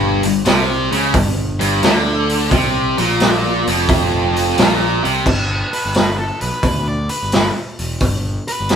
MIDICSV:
0, 0, Header, 1, 5, 480
1, 0, Start_track
1, 0, Tempo, 687285
1, 1753, Time_signature, 4, 2, 24, 8
1, 6116, End_track
2, 0, Start_track
2, 0, Title_t, "Lead electric guitar"
2, 0, Program_c, 0, 29
2, 4007, Note_on_c, 0, 71, 81
2, 4310, Note_off_c, 0, 71, 0
2, 4320, Note_on_c, 0, 69, 74
2, 4472, Note_off_c, 0, 69, 0
2, 4483, Note_on_c, 0, 71, 70
2, 4789, Note_off_c, 0, 71, 0
2, 4804, Note_on_c, 0, 74, 69
2, 4954, Note_off_c, 0, 74, 0
2, 4960, Note_on_c, 0, 71, 88
2, 5218, Note_off_c, 0, 71, 0
2, 5923, Note_on_c, 0, 71, 78
2, 6116, Note_off_c, 0, 71, 0
2, 6116, End_track
3, 0, Start_track
3, 0, Title_t, "Distorted electric guitar"
3, 0, Program_c, 1, 30
3, 0, Note_on_c, 1, 43, 109
3, 158, Note_off_c, 1, 43, 0
3, 170, Note_on_c, 1, 43, 76
3, 290, Note_off_c, 1, 43, 0
3, 318, Note_on_c, 1, 48, 106
3, 633, Note_off_c, 1, 48, 0
3, 641, Note_on_c, 1, 49, 109
3, 790, Note_off_c, 1, 49, 0
3, 794, Note_on_c, 1, 43, 81
3, 1055, Note_off_c, 1, 43, 0
3, 1114, Note_on_c, 1, 43, 111
3, 1266, Note_off_c, 1, 43, 0
3, 1276, Note_on_c, 1, 50, 103
3, 1749, Note_off_c, 1, 50, 0
3, 1754, Note_on_c, 1, 48, 104
3, 2069, Note_off_c, 1, 48, 0
3, 2082, Note_on_c, 1, 46, 98
3, 2550, Note_off_c, 1, 46, 0
3, 2569, Note_on_c, 1, 41, 98
3, 3192, Note_off_c, 1, 41, 0
3, 3194, Note_on_c, 1, 46, 97
3, 3509, Note_off_c, 1, 46, 0
3, 3519, Note_on_c, 1, 48, 92
3, 3667, Note_off_c, 1, 48, 0
3, 6116, End_track
4, 0, Start_track
4, 0, Title_t, "Picked electric bass"
4, 0, Program_c, 2, 34
4, 0, Note_on_c, 2, 31, 89
4, 142, Note_off_c, 2, 31, 0
4, 168, Note_on_c, 2, 31, 83
4, 309, Note_off_c, 2, 31, 0
4, 321, Note_on_c, 2, 36, 84
4, 622, Note_off_c, 2, 36, 0
4, 642, Note_on_c, 2, 37, 91
4, 784, Note_off_c, 2, 37, 0
4, 799, Note_on_c, 2, 31, 79
4, 1100, Note_off_c, 2, 31, 0
4, 1126, Note_on_c, 2, 31, 99
4, 1266, Note_off_c, 2, 31, 0
4, 1281, Note_on_c, 2, 38, 91
4, 1728, Note_off_c, 2, 38, 0
4, 1758, Note_on_c, 2, 36, 83
4, 2058, Note_off_c, 2, 36, 0
4, 2084, Note_on_c, 2, 34, 88
4, 2532, Note_off_c, 2, 34, 0
4, 2567, Note_on_c, 2, 29, 94
4, 3168, Note_off_c, 2, 29, 0
4, 3201, Note_on_c, 2, 34, 95
4, 3500, Note_off_c, 2, 34, 0
4, 3523, Note_on_c, 2, 36, 86
4, 3663, Note_off_c, 2, 36, 0
4, 3676, Note_on_c, 2, 31, 86
4, 3930, Note_off_c, 2, 31, 0
4, 4088, Note_on_c, 2, 31, 70
4, 4399, Note_off_c, 2, 31, 0
4, 4486, Note_on_c, 2, 35, 82
4, 4543, Note_off_c, 2, 35, 0
4, 4634, Note_on_c, 2, 38, 91
4, 4950, Note_off_c, 2, 38, 0
4, 5047, Note_on_c, 2, 31, 70
4, 5231, Note_off_c, 2, 31, 0
4, 5444, Note_on_c, 2, 28, 75
4, 5564, Note_off_c, 2, 28, 0
4, 5597, Note_on_c, 2, 31, 83
4, 5852, Note_off_c, 2, 31, 0
4, 6009, Note_on_c, 2, 31, 72
4, 6116, Note_off_c, 2, 31, 0
4, 6116, End_track
5, 0, Start_track
5, 0, Title_t, "Drums"
5, 160, Note_on_c, 9, 46, 57
5, 230, Note_off_c, 9, 46, 0
5, 317, Note_on_c, 9, 46, 73
5, 327, Note_on_c, 9, 38, 105
5, 387, Note_off_c, 9, 46, 0
5, 397, Note_off_c, 9, 38, 0
5, 644, Note_on_c, 9, 46, 53
5, 714, Note_off_c, 9, 46, 0
5, 794, Note_on_c, 9, 46, 77
5, 796, Note_on_c, 9, 36, 106
5, 864, Note_off_c, 9, 46, 0
5, 866, Note_off_c, 9, 36, 0
5, 1122, Note_on_c, 9, 46, 62
5, 1192, Note_off_c, 9, 46, 0
5, 1275, Note_on_c, 9, 46, 68
5, 1285, Note_on_c, 9, 38, 100
5, 1345, Note_off_c, 9, 46, 0
5, 1355, Note_off_c, 9, 38, 0
5, 1602, Note_on_c, 9, 46, 53
5, 1672, Note_off_c, 9, 46, 0
5, 1755, Note_on_c, 9, 36, 99
5, 1755, Note_on_c, 9, 46, 73
5, 1825, Note_off_c, 9, 36, 0
5, 1825, Note_off_c, 9, 46, 0
5, 2081, Note_on_c, 9, 46, 55
5, 2150, Note_off_c, 9, 46, 0
5, 2235, Note_on_c, 9, 46, 73
5, 2245, Note_on_c, 9, 38, 93
5, 2305, Note_off_c, 9, 46, 0
5, 2314, Note_off_c, 9, 38, 0
5, 2565, Note_on_c, 9, 46, 55
5, 2634, Note_off_c, 9, 46, 0
5, 2715, Note_on_c, 9, 36, 113
5, 2717, Note_on_c, 9, 46, 79
5, 2785, Note_off_c, 9, 36, 0
5, 2787, Note_off_c, 9, 46, 0
5, 3047, Note_on_c, 9, 46, 49
5, 3117, Note_off_c, 9, 46, 0
5, 3196, Note_on_c, 9, 46, 76
5, 3206, Note_on_c, 9, 38, 116
5, 3266, Note_off_c, 9, 46, 0
5, 3276, Note_off_c, 9, 38, 0
5, 3526, Note_on_c, 9, 46, 48
5, 3596, Note_off_c, 9, 46, 0
5, 3673, Note_on_c, 9, 36, 98
5, 3674, Note_on_c, 9, 49, 89
5, 3743, Note_off_c, 9, 36, 0
5, 3744, Note_off_c, 9, 49, 0
5, 4001, Note_on_c, 9, 46, 56
5, 4071, Note_off_c, 9, 46, 0
5, 4151, Note_on_c, 9, 46, 70
5, 4161, Note_on_c, 9, 38, 100
5, 4221, Note_off_c, 9, 46, 0
5, 4230, Note_off_c, 9, 38, 0
5, 4476, Note_on_c, 9, 46, 52
5, 4546, Note_off_c, 9, 46, 0
5, 4629, Note_on_c, 9, 46, 75
5, 4630, Note_on_c, 9, 36, 96
5, 4699, Note_off_c, 9, 46, 0
5, 4700, Note_off_c, 9, 36, 0
5, 4952, Note_on_c, 9, 46, 54
5, 5022, Note_off_c, 9, 46, 0
5, 5112, Note_on_c, 9, 46, 65
5, 5121, Note_on_c, 9, 38, 108
5, 5181, Note_off_c, 9, 46, 0
5, 5191, Note_off_c, 9, 38, 0
5, 5438, Note_on_c, 9, 46, 49
5, 5508, Note_off_c, 9, 46, 0
5, 5590, Note_on_c, 9, 46, 70
5, 5594, Note_on_c, 9, 36, 88
5, 5660, Note_off_c, 9, 46, 0
5, 5663, Note_off_c, 9, 36, 0
5, 5919, Note_on_c, 9, 46, 59
5, 5989, Note_off_c, 9, 46, 0
5, 6068, Note_on_c, 9, 46, 68
5, 6078, Note_on_c, 9, 38, 97
5, 6116, Note_off_c, 9, 38, 0
5, 6116, Note_off_c, 9, 46, 0
5, 6116, End_track
0, 0, End_of_file